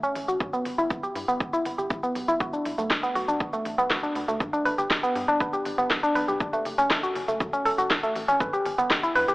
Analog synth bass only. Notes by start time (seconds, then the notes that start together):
0.15 A1
0.28 A1
0.40 G2
0.65 G1
0.78 G1
0.90 G1
1.15 G2
1.28 G1
1.40 G1
1.65 G1
1.78 G1
1.90 B1
2.15 B1
2.28 B1
2.40 B1
2.65 B1
2.78 B1
2.90 B1
3.15 B1
3.28 B1
3.40 F#1
3.65 A1
3.78 B1
3.90 D2
4.15 D2
4.28 D2
4.40 G2
4.65 G1
4.78 G1
4.90 G1
5.15 G2
5.28 G1
5.40 G1
5.65 G1
5.78 G1
5.90 B1
6.15 B1
6.28 B1
6.40 F#1
6.65 F#1
6.78 F#1
6.90 F#1
7.15 F#1
7.28 F#1
7.40 F#2
7.65 E1
7.78 F#1
7.90 A1
8.15 A1
8.28 A1
8.40 G2
8.65 G1
8.78 G1
8.90 G1
9.15 G2
9.28 G1